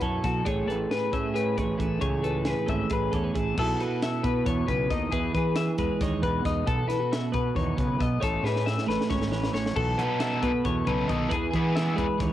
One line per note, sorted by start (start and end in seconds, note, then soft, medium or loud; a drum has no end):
0.00 0.19 F#2 medium
0.00 0.45 B2 medium
0.00 0.49 B3 medium
0.00 1.12 E4 medium
0.00 0.24 F#4 medium
0.00 0.68 A4 medium
0.00 0.24 C#5 medium
0.00 kick medium
0.00 closed hi-hat medium
0.24 0.41 B2 loud
0.24 0.44 F#3 medium
0.24 0.44 F#4 soft
0.24 0.45 A4 medium
0.24 kick medium
0.24 snare soft
0.24 closed hi-hat medium
0.45 0.64 A1 medium
0.45 2.00 A2 medium
0.45 0.92 G#4 medium
0.45 0.68 C#5 medium
0.45 kick loud
0.45 closed hi-hat medium
0.68 0.85 A1 medium
0.68 0.91 A4 medium
0.68 1.57 B4 medium
0.68 closed hi-hat medium
0.91 1.33 G#4 medium
0.91 1.13 B4 medium
0.91 snare loud
0.91 closed hi-hat medium
1.12 1.59 A2 medium
1.12 2.04 A3 medium
1.12 2.27 C#4 medium
1.12 1.36 E5 medium
1.12 kick medium
1.12 closed hi-hat medium
1.34 1.77 G#4 medium
1.34 1.57 B4 medium
1.34 closed hi-hat medium
1.57 1.74 A1 medium
1.57 2.04 B4 medium
1.57 1.79 C#5 medium
1.57 kick medium
1.57 closed hi-hat medium
1.78 1.97 A1 medium
1.78 3.34 E3 medium
1.78 1.99 G#4 soft
1.78 2.02 A4 medium
1.78 kick medium
1.78 closed hi-hat medium
2.01 2.53 C#2 medium
2.01 3.57 A2 medium
2.01 2.44 G#4 medium
2.01 2.24 C#5 medium
2.01 kick loud
2.01 closed hi-hat medium
2.23 2.47 A4 medium
2.23 3.11 B4 medium
2.23 closed hi-hat medium
2.45 2.89 G#4 medium
2.45 2.69 B4 medium
2.45 snare loud
2.45 closed hi-hat medium
2.66 2.85 G#1 medium
2.66 3.54 A3 medium
2.66 3.54 C#4 medium
2.66 2.91 E5 medium
2.66 kick medium
2.66 closed hi-hat medium
2.90 3.08 A1 medium
2.90 3.33 G#4 medium
2.90 3.14 B4 medium
2.90 kick loud
2.90 closed hi-hat medium
3.12 3.30 E2 medium
3.12 3.24 A4 medium
3.12 3.37 C#5 medium
3.12 kick medium
3.12 closed hi-hat medium
3.24 3.57 B4 medium
3.34 3.53 A1 medium
3.34 3.54 E3 medium
3.34 3.54 G#4 medium
3.34 3.58 A4 medium
3.34 kick medium
3.34 closed hi-hat medium
3.58 3.75 B1 loud
3.58 4.44 B2 medium
3.58 4.23 B3 medium
3.58 6.01 E4 medium
3.58 3.79 F#4 medium
3.58 3.80 A4 medium
3.58 5.13 A4 medium
3.58 kick loud
3.58 crash loud
3.80 5.10 F#4 medium
3.80 4.02 B4 medium
3.80 closed hi-hat medium
4.02 4.25 E5 medium
4.02 snare loud
4.02 closed hi-hat loud
4.23 4.41 B2 medium
4.23 5.78 B3 medium
4.23 4.46 B4 medium
4.23 kick medium
4.23 closed hi-hat medium
4.45 4.63 E2 medium
4.45 4.67 B2 medium
4.45 4.68 C#5 medium
4.45 kick loud
4.45 closed hi-hat loud
4.67 4.85 B1 medium
4.67 4.90 C#3 medium
4.67 4.90 B4 medium
4.67 kick medium
4.67 closed hi-hat medium
4.90 5.07 D#2 medium
4.90 5.12 D#3 medium
4.90 5.12 D#5 medium
4.90 kick medium
4.90 snare soft
4.90 closed hi-hat medium
5.11 5.29 E2 loud
5.11 7.03 E3 medium
5.11 5.34 G#4 medium
5.11 6.22 B4 medium
5.11 kick loud
5.11 closed hi-hat medium
5.34 5.68 E3 medium
5.34 6.66 G#4 medium
5.34 5.57 B4 medium
5.34 kick medium
5.34 closed hi-hat medium
5.56 5.78 E5 medium
5.56 snare loud
5.56 closed hi-hat loud
5.78 5.87 E2 medium
5.78 6.64 G#3 medium
5.78 6.01 B4 medium
5.78 kick medium
5.78 closed hi-hat medium
6.01 6.23 D#2 loud
6.01 6.44 D#4 medium
6.01 6.23 C#5 medium
6.01 kick loud
6.01 snare soft
6.01 closed hi-hat medium
6.22 6.39 E2 medium
6.22 6.64 B2 medium
6.22 6.64 B4 medium
6.22 6.45 B4 medium
6.22 kick medium
6.22 closed hi-hat medium
6.45 6.62 E2 medium
6.45 6.64 D#4 medium
6.45 6.67 D#5 medium
6.45 kick medium
6.45 snare soft
6.45 closed hi-hat medium
6.66 6.84 B1 loud
6.66 7.76 B2 medium
6.66 8.21 A4 medium
6.66 6.88 A4 loud
6.66 kick loud
6.66 closed hi-hat medium
6.88 7.00 E4 medium
6.88 7.11 B4 medium
6.88 snare soft
6.88 closed hi-hat medium
7.00 8.21 F#4 medium
7.13 7.34 E5 medium
7.13 snare loud
7.13 closed hi-hat loud
7.32 7.51 B2 medium
7.32 8.18 B3 medium
7.32 7.56 B4 medium
7.32 kick medium
7.32 closed hi-hat medium
7.55 7.72 E2 medium
7.55 7.77 D#3 medium
7.55 7.79 C#5 medium
7.55 kick loud
7.55 closed hi-hat loud
7.77 7.94 B1 medium
7.77 7.99 C#3 medium
7.77 8.01 B4 medium
7.77 kick medium
7.77 closed hi-hat medium
7.99 8.17 B1 medium
7.99 8.20 B2 medium
7.99 8.22 D#5 medium
7.99 kick medium
7.99 closed hi-hat medium
8.20 8.39 A1 loud
8.20 9.75 A2 medium
8.20 8.44 A4 medium
8.20 9.31 C#5 medium
8.20 kick loud
8.20 closed hi-hat loud
8.43 8.76 A2 medium
8.43 9.74 G#4 medium
8.43 8.66 B4 medium
8.43 snare medium
8.56 snare medium
8.66 8.88 E5 medium
8.66 snare medium
8.78 snare medium
8.87 8.96 A1 medium
8.87 9.73 A3 medium
8.87 9.09 B4 medium
8.87 snare medium
9.01 snare medium
9.09 9.31 G#1 loud
9.09 9.52 C#4 medium
9.09 9.33 C#5 medium
9.09 kick loud
9.09 snare medium
9.21 snare medium
9.31 9.48 A1 medium
9.31 10.01 E3 medium
9.31 9.54 B4 medium
9.31 9.73 C#5 medium
9.31 snare medium
9.43 snare medium
9.53 9.70 A1 medium
9.53 9.73 C#4 medium
9.53 9.76 C#5 medium
9.53 snare medium
9.66 snare medium
9.75 9.93 B1 loud
9.75 10.63 B2 medium
9.75 9.98 A4 medium
9.75 11.29 A4 medium
9.75 kick loud
9.75 crash loud
9.98 10.19 F#3 medium
9.98 10.21 B3 medium
9.98 10.20 D#4 medium
9.98 11.28 F#4 medium
9.98 10.21 A4 medium
9.98 10.20 B4 medium
9.98 closed hi-hat medium
10.20 10.49 F#3 medium
10.20 10.50 B3 medium
10.20 10.50 D#4 medium
10.20 10.50 A4 medium
10.20 10.43 E5 medium
10.20 snare loud
10.20 closed hi-hat loud
10.42 10.60 B2 medium
10.42 11.95 B3 medium
10.42 10.65 B4 medium
10.42 kick medium
10.42 closed hi-hat medium
10.64 10.82 E2 medium
10.64 10.84 B2 medium
10.64 10.87 C#5 medium
10.64 kick loud
10.64 closed hi-hat medium
10.85 11.04 B1 medium
10.85 11.08 C#3 medium
10.85 11.09 B3 medium
10.85 11.10 D#4 medium
10.85 11.09 A4 medium
10.85 11.09 B4 medium
10.85 kick medium
10.85 closed hi-hat medium
10.89 11.09 F#3 medium
11.07 11.26 B1 medium
11.07 11.29 D#3 medium
11.07 11.32 F#3 medium
11.07 11.32 B3 medium
11.07 11.31 D#5 medium
11.07 kick medium
11.07 closed hi-hat medium
11.11 11.32 D#4 medium
11.11 11.33 A4 medium
11.29 11.48 E2 loud
11.29 12.18 E3 medium
11.29 11.54 G#4 medium
11.29 12.33 B4 medium
11.29 kick loud
11.29 closed hi-hat loud
11.51 11.87 E3 medium
11.51 12.33 G#4 medium
11.51 11.76 B4 medium
11.51 kick medium
11.51 closed hi-hat medium
11.55 11.75 G#3 medium
11.55 11.76 B3 medium
11.55 11.75 E4 medium
11.55 11.76 G#4 medium
11.76 12.04 G#3 medium
11.76 12.05 B3 medium
11.76 12.05 E4 medium
11.76 12.05 G#4 medium
11.76 11.97 E5 medium
11.76 snare loud
11.76 closed hi-hat loud
11.95 12.07 E2 medium
11.95 12.33 G#3 medium
11.95 12.20 B4 medium
11.95 kick medium
11.95 closed hi-hat medium
12.18 12.33 D#2 loud
12.18 12.33 E3 medium
12.18 12.33 C#5 medium
12.18 kick loud
12.18 snare soft
12.18 closed hi-hat medium